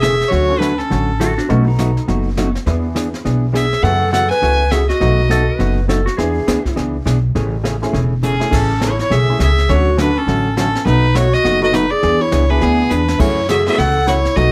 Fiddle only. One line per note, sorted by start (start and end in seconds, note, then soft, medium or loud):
0.01 0.30 E5 loud
0.28 0.60 C#5 medium
0.59 0.79 B4 medium
0.78 1.37 A4 medium
3.56 3.84 E5 medium
3.83 4.11 F#5 medium
4.12 4.29 F#5 medium
4.30 4.72 G#5 loud
4.71 4.88 E5 medium
4.89 5.73 D#5 medium
8.24 8.55 G#4 medium
8.54 8.85 A4 medium
8.84 9.00 C#5 medium
9.01 9.14 C#5 medium
9.12 9.41 E5 medium
9.42 9.71 E5 medium
9.69 9.99 C#5 loud
10.00 10.19 B4 medium
10.18 10.57 A4 medium
10.58 10.85 A4 medium
10.86 11.17 B4 medium
11.16 11.35 C#5 medium
11.33 11.62 D#5 loud
11.63 11.76 D#5 medium
11.75 11.92 B4 medium
11.91 12.22 D5 medium
12.21 12.52 C#5 medium
12.50 12.63 B4 medium
12.62 12.92 G#4 medium
12.90 13.21 B4 medium
13.20 13.49 C#5 medium
13.50 13.66 E5 medium
13.67 13.80 E5 medium
13.79 14.10 F#5 loud
14.08 14.38 C#5 loud
14.36 14.52 D#5 loud